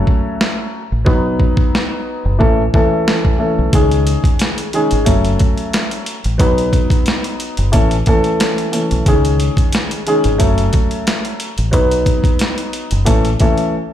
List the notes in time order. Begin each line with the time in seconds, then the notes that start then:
Already playing: F#3 A3 C#4 A4
0.07 kick
0.41 snare
0.92 A1
1.05 B1 F#3 B3 D#4 B4, kick
1.40 kick
1.57 kick
1.75 snare
2.25 F#1
2.39 A1 E3 A3 C#4 A4, kick
2.74 E3 A3 C#4 A4, kick
3.08 snare
3.25 kick
3.39 E3 A3 C#4 A4
3.59 B1
3.73 C#2 D#3 G#3 C#4 G#4, kick, closed hi-hat
3.91 closed hi-hat
4.07 closed hi-hat
4.24 kick, closed hi-hat
4.39 snare, closed hi-hat
4.58 closed hi-hat
4.73 D#3 G#3 C#4 G#4, closed hi-hat
4.91 G#1, closed hi-hat
5.05 F#1 F#3 A3 C#4 A4, kick, closed hi-hat
5.25 closed hi-hat
5.39 kick, closed hi-hat
5.58 closed hi-hat
5.73 snare, closed hi-hat
5.91 closed hi-hat
6.06 closed hi-hat
6.24 A1, closed hi-hat
6.38 B1 F#3 B3 D#4 B4, kick, closed hi-hat
6.58 closed hi-hat
6.73 kick, closed hi-hat
6.90 kick, closed hi-hat
7.06 snare, closed hi-hat
7.24 closed hi-hat
7.40 closed hi-hat
7.57 F#1, closed hi-hat
7.72 A1 E3 A3 C#4 A4, kick, closed hi-hat
7.91 closed hi-hat
8.06 E3 A3 C#4 A4, kick, closed hi-hat
8.24 closed hi-hat
8.40 snare, closed hi-hat
8.58 closed hi-hat
8.72 E3 A3 C#4 A4, closed hi-hat
8.91 B1, closed hi-hat
9.06 C#2 D#3 G#3 C#4 G#4, kick, closed hi-hat
9.25 closed hi-hat
9.40 closed hi-hat
9.57 kick, closed hi-hat
9.73 snare, closed hi-hat
9.91 closed hi-hat
10.07 D#3 G#3 C#4 G#4, closed hi-hat
10.24 G#1, closed hi-hat
10.38 F#1 F#3 A3 C#4 A4, kick, closed hi-hat
10.58 closed hi-hat
10.73 kick, closed hi-hat
10.91 closed hi-hat
11.07 snare, closed hi-hat
11.25 closed hi-hat
11.40 closed hi-hat
11.58 A1, closed hi-hat
11.71 B1 F#3 B3 D#4 B4, kick, closed hi-hat
11.91 closed hi-hat
12.06 kick, closed hi-hat
12.24 kick, closed hi-hat
12.39 snare, closed hi-hat
12.58 closed hi-hat
12.73 closed hi-hat
12.91 F#1, closed hi-hat
13.05 A1 E3 A3 C#4 A4, kick, closed hi-hat
13.25 closed hi-hat
13.40 E3 A3 C#4 A4, kick, closed hi-hat
13.58 closed hi-hat